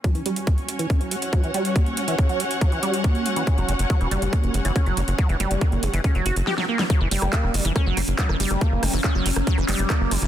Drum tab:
HH |xxxxxxxxxxxxxxxx|xxxxxxxxxxxxxxxx|xxxxxxxxxxxxxxxx|xxxxxxxxxxxx----|
CP |----------------|----------------|----------------|----------------|
SD |----------------|----------------|----------------|------------oo-o|
BD |o---o---o---o---|o---o---o---o---|o---o---o---o---|o---o---o-------|

HH |x-oxx-oxx-oxx-ox|x-oo--oxx-oxx-ox|
CP |----x-------x---|----x-----x-x---|
SD |r--r-r--r-r--r-r|--r-r--r-r--r-r-|
BD |o---o---o---o---|o---o---o---o---|